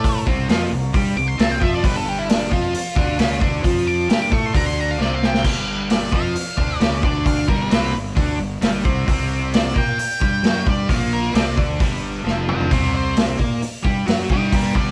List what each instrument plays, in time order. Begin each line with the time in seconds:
Already playing: fingered electric bass A2, overdriven electric guitar A3 A4, lead electric guitar D5
0.04 kick, open hi-hat
0.26 fingered electric bass C2, overdriven electric guitar C3 C4, kick
0.48 fingered electric bass F2, overdriven electric guitar F3 F4, snare, open hi-hat
0.71 fingered electric bass C2, overdriven electric guitar C3
0.93 fingered electric bass G2, overdriven electric guitar G3 G4, kick, open hi-hat
1.16 fingered electric bass C2, overdriven electric guitar C3, lead electric guitar D6
1.28 lead electric guitar C6
1.38 fingered electric bass C2, overdriven electric guitar C3 C4, lead electric guitar A5, snare, open hi-hat
1.51 lead electric guitar G5
1.60 fingered electric bass F2, overdriven electric guitar F3 F4, lead electric guitar E5, kick
1.74 lead electric guitar D5
1.82 fingered electric bass G1, overdriven electric guitar G2 G3, lead electric guitar B4, kick, open hi-hat
1.96 lead electric guitar A4
2.09 lead electric guitar G4
2.19 lead electric guitar E4
2.29 lead electric guitar D4, snare, open hi-hat
2.50 fingered electric bass F2, overdriven electric guitar F3 F4, lead electric guitar F4, kick
2.74 muted overdriven electric guitar stroke, muted fingered electric bass stroke, open hi-hat
2.96 fingered electric bass D2, overdriven electric guitar D3 D4, kick
3.18 fingered electric bass C#2, overdriven electric guitar C#3 C#4, snare, open hi-hat
3.40 fingered electric bass D2, overdriven electric guitar D3 D4, kick
3.63 fingered electric bass F2, overdriven electric guitar F3 F4, kick, open hi-hat
3.88 lead electric guitar D6
4.08 fingered electric bass G2, overdriven electric guitar G3 G4, snare, open hi-hat
4.22 lead electric guitar D6
4.31 fingered electric bass A2, overdriven electric guitar A3 A4, lead electric guitar C#6, kick
4.46 lead electric guitar C6
4.53 fingered electric bass D2, overdriven electric guitar D3 D4, lead electric guitar A#5, kick, open hi-hat
4.66 lead electric guitar C6
4.81 lead electric guitar A#5
4.91 lead electric guitar F5
4.99 fingered electric bass C2, overdriven electric guitar C3 C4, lead electric guitar D5, snare
5.14 lead electric guitar F5
5.23 lead electric guitar G5, snare
5.34 snare
5.43 fingered electric bass G1, overdriven electric guitar G2 G3, kick, crash
5.90 lead electric guitar D5, snare, open hi-hat
6.11 fingered electric bass F2, overdriven electric guitar F3 F4, lead electric guitar F5, kick
6.34 muted overdriven electric guitar stroke, muted fingered electric bass stroke, open hi-hat
6.57 fingered electric bass D2, overdriven electric guitar D3 D4, kick
6.78 fingered electric bass C#2, overdriven electric guitar C#3 C#4, lead electric guitar D5, snare, open hi-hat
7.03 fingered electric bass D2, overdriven electric guitar D3 D4, lead electric guitar D5, kick
7.26 lead electric guitar F5, kick, open hi-hat
7.47 fingered electric bass G1, overdriven electric guitar G2 G3, lead electric guitar A#4, kick
7.69 fingered electric bass C2, overdriven electric guitar C3 C4, lead electric guitar B4, snare, open hi-hat
7.93 fingered electric bass G1, overdriven electric guitar G2
8.15 fingered electric bass D2, overdriven electric guitar D3 D4, kick, open hi-hat
8.38 fingered electric bass G1, overdriven electric guitar G2
8.61 fingered electric bass G1, overdriven electric guitar G2 G3, snare, open hi-hat
8.84 fingered electric bass C2, overdriven electric guitar C3 C4, kick
9.07 fingered electric bass C2, overdriven electric guitar C3 C4, kick, open hi-hat
9.53 lead electric guitar D5, snare, open hi-hat
9.74 fingered electric bass A#2, overdriven electric guitar A#3 A#4, lead electric guitar G5, kick
9.98 muted overdriven electric guitar stroke, muted fingered electric bass stroke, open hi-hat
10.20 fingered electric bass G2, overdriven electric guitar G3 G4, kick
10.43 fingered electric bass F#2, overdriven electric guitar F#3 F#4, snare, open hi-hat
10.65 fingered electric bass G2, overdriven electric guitar G3 G4, kick
10.70 lead electric guitar D5
10.88 fingered electric bass A#1, overdriven electric guitar A#2 A#3, lead electric guitar F5, kick, open hi-hat
11.13 lead electric guitar A#4
11.34 fingered electric bass C2, overdriven electric guitar C3 C4, lead electric guitar D5, snare, open hi-hat
11.56 fingered electric bass D2, overdriven electric guitar D3 D4, kick
11.79 fingered electric bass G1, overdriven electric guitar G2 G3, kick, open hi-hat
12.24 fingered electric bass F1, overdriven electric guitar F2 F3, snare
12.49 lead electric guitar B4 G5, mid tom
12.61 floor tom
12.70 fingered electric bass C2, overdriven electric guitar C3 C4, lead electric guitar A#4 D5, kick, open hi-hat
12.96 lead electric guitar C5
13.16 snare, open hi-hat
13.38 fingered electric bass A#2, overdriven electric guitar A#3 A#4, kick
13.60 muted overdriven electric guitar stroke, muted fingered electric bass stroke, open hi-hat
13.83 fingered electric bass G2, overdriven electric guitar G3 G4, kick
14.06 fingered electric bass F#2, overdriven electric guitar F#3 F#4, snare, open hi-hat
14.29 fingered electric bass G2, overdriven electric guitar G3 G4, lead electric guitar A#4 G5, kick
14.52 lead electric guitar F4 D5, kick, open hi-hat
14.74 fingered electric bass G1, overdriven electric guitar G2 G3, lead electric guitar D5, kick